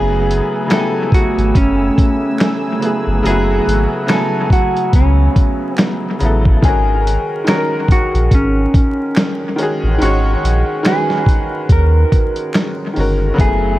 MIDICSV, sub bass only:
0, 0, Header, 1, 2, 480
1, 0, Start_track
1, 0, Tempo, 845070
1, 1843, Time_signature, 4, 2, 24, 8
1, 7833, End_track
2, 0, Start_track
2, 0, Title_t, "Sub bass"
2, 0, Program_c, 0, 38
2, 0, Note_on_c, 0, 30, 101
2, 233, Note_off_c, 0, 30, 0
2, 782, Note_on_c, 0, 32, 83
2, 866, Note_off_c, 0, 32, 0
2, 883, Note_on_c, 0, 30, 100
2, 1080, Note_off_c, 0, 30, 0
2, 1744, Note_on_c, 0, 31, 95
2, 1827, Note_off_c, 0, 31, 0
2, 1847, Note_on_c, 0, 30, 120
2, 2043, Note_off_c, 0, 30, 0
2, 2085, Note_on_c, 0, 32, 92
2, 2196, Note_off_c, 0, 32, 0
2, 2803, Note_on_c, 0, 37, 104
2, 3000, Note_off_c, 0, 37, 0
2, 3529, Note_on_c, 0, 33, 89
2, 3724, Note_off_c, 0, 33, 0
2, 3766, Note_on_c, 0, 32, 104
2, 4074, Note_off_c, 0, 32, 0
2, 4625, Note_on_c, 0, 34, 78
2, 4708, Note_off_c, 0, 34, 0
2, 4725, Note_on_c, 0, 32, 83
2, 4922, Note_off_c, 0, 32, 0
2, 5586, Note_on_c, 0, 33, 79
2, 5668, Note_off_c, 0, 33, 0
2, 5688, Note_on_c, 0, 32, 106
2, 5883, Note_off_c, 0, 32, 0
2, 5929, Note_on_c, 0, 34, 79
2, 6039, Note_off_c, 0, 34, 0
2, 6644, Note_on_c, 0, 39, 97
2, 6841, Note_off_c, 0, 39, 0
2, 7368, Note_on_c, 0, 31, 90
2, 7563, Note_off_c, 0, 31, 0
2, 7607, Note_on_c, 0, 30, 105
2, 7833, Note_off_c, 0, 30, 0
2, 7833, End_track
0, 0, End_of_file